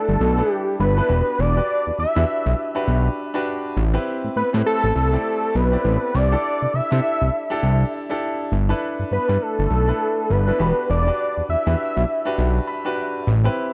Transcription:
Already playing: D4 E4 A4 B4 D5
0.09 G1
0.21 B1
0.37 D4 E4 A4 B4
0.52 G4
0.80 G1 B4
0.97 D4 E4 A4 B4
1.08 E1 D4 F#4 G4 B4
1.39 E1 D5
1.56 D4 F#4 G4 B4
1.87 E2
1.99 E2 E5
2.15 E2 D4 F#4 G4 B4
2.46 B1
2.75 D4 F#4 G4 B4
2.88 B1
3.34 D4 F#4 G4 B4
3.77 A1
3.93 C4 E4 G4 B4
4.24 A2
4.36 A2 B4
4.53 A2 C4 E4 G4 B4
4.66 A4
4.84 A1
4.96 C2
5.12 C4 E4 G4 D5
5.55 B1 B4
5.72 C4 E4 G4 D5
5.85 A1
6.15 C2 D5
6.31 D4 E4 G4 A4
6.62 C3
6.74 C3 E5
6.91 C3 D4 E4 G4 A4
7.22 C2
7.50 D4 E4 G4 A4
7.63 C2
8.09 D4 E4 G4 A4
8.52 G1
8.69 D4 E4 A4 B4
9.00 G2
9.11 G2 B4
9.28 G2 D4 E4 A4 B4
9.42 A4
9.59 G1
9.71 B1
9.87 D4 E4 A4 B4
10.30 G1 B4
10.47 D4 E4 A4 B4
10.59 E1 D4 F#4 G4 B4
10.90 E1 D5
11.07 D4 F#4 G4 B4
11.37 E2
11.49 E2 E5
11.66 E2 D4 F#4 G4 B4
11.97 B1
12.25 D4 F#4 G4 B4
12.38 B1
12.68 B5
12.85 D4 F#4 G4 B4
12.97 G5
13.27 A1
13.44 C4 E4 G4 B4

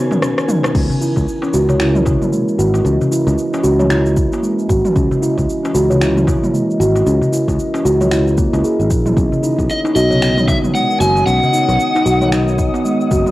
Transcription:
Already playing: D#3 B3 A#4 C#5 G#5
0.11 C#4, mid tom, darbuka tek, shaker
0.22 C#4, cross-stick, shaker
0.38 cross-stick, shaker
0.48 D#4, mid tom, shaker
0.63 cross-stick, darbuka tek, shaker
0.75 C#2 E3 C#4, kick, crash, shaker
0.90 darbuka dum, shaker
1.01 E4, darbuka ka, shaker
1.16 C#2 C#4, kick, darbuka ka, shaker
1.28 shaker
1.34 D#5
1.42 C#4, darbuka tek, shaker
1.54 C#2 F#4, shaker
1.69 C#5, darbuka ka, darbuka dum, shaker
1.80 E4, finger snap, shaker
1.95 mid tom, shaker
2.05 E4, kick, darbuka ka, darbuka tek, darbuka dum, shaker
2.22 A#3, mid tom, shaker
2.32 G#3, shaker
2.48 shaker
2.58 G#1 F#4, shaker
2.74 darbuka tek, shaker
2.84 C#2 C#4, shaker
3.01 darbuka dum, shaker
3.11 E4, darbuka ka, shaker
3.27 C#2, darbuka ka, shaker
3.38 shaker
3.53 C#4, darbuka tek, shaker
3.63 C#2 F#4, shaker
3.79 C#5, mid tom, darbuka ka, shaker
3.90 E4, finger snap, shaker
4.06 shaker
4.17 E4, kick, shaker
4.32 A#3, darbuka tek, shaker
4.43 G#3, shaker
4.59 shaker
4.69 G#1 F#4, kick, shaker
4.85 mid tom, shaker
4.96 C#2 C#4, kick, shaker
5.11 darbuka dum, shaker
5.22 E4, darbuka ka, shaker
5.38 C#2, kick, darbuka ka, shaker
5.50 shaker
5.64 C#4, darbuka tek, shaker
5.74 C#2 F#4, shaker
5.90 C#5, darbuka ka, darbuka dum, shaker
6.01 E4, finger snap, shaker
6.17 mid tom, shaker
6.27 E4, kick, darbuka ka, darbuka tek, darbuka dum, shaker
6.43 A#3, mid tom, shaker
6.53 G#3, shaker
6.70 shaker
6.80 G#1 F#4, shaker
6.96 darbuka tek, shaker
7.06 C#2 C#4, shaker
7.21 darbuka dum, shaker
7.32 E4, darbuka ka, shaker
7.48 C#2, kick, darbuka ka, darbuka tek, shaker
7.59 shaker
7.74 C#4, darbuka tek, shaker
7.85 C#2 F#4, shaker
8.01 C#5, mid tom, darbuka ka, shaker
8.11 E4, finger snap, shaker
8.27 shaker
8.38 A#3, kick, shaker
8.53 C#2 E4, darbuka tek, shaker
8.64 G#4, shaker
8.79 G#1, shaker
8.90 A#1 A#3, kick, shaker
9.06 E4, mid tom, shaker
9.16 B1 D#3 C#4 D#5, kick, shaker
9.32 darbuka dum, shaker
9.38 B3
9.43 D#4 C#5, darbuka ka, shaker
9.58 B1, kick, darbuka ka, shaker
9.70 D#5, shaker
9.84 D#4, darbuka tek, shaker
9.95 B1 F#4 D#5, shaker
10.10 C#5, darbuka ka, darbuka dum, shaker
10.21 D#4, finger snap, shaker
10.29 A#4
10.38 mid tom, shaker
10.47 D#4 E5, kick, darbuka ka, darbuka tek, darbuka dum, shaker
10.63 B3, mid tom, shaker
10.74 G#3 F#5, shaker
10.91 shaker
11.00 F#1 F#4 G#5, shaker
11.16 darbuka tek, shaker
11.26 B1 C#4 F#5, shaker
11.43 darbuka dum, shaker
11.53 D#4, darbuka ka, shaker
11.69 B1, darbuka ka, shaker
11.80 shaker
11.95 D#4, darbuka tek, shaker
12.06 B1 F#4, shaker
12.21 C#5, mid tom, darbuka ka, shaker
12.32 D#4, finger snap, shaker
12.48 shaker
12.58 D#4, kick, shaker
12.74 B3, darbuka tek, shaker
12.85 G#3, shaker
13.01 shaker
13.11 F#1 F#4, kick, shaker
13.26 mid tom, shaker

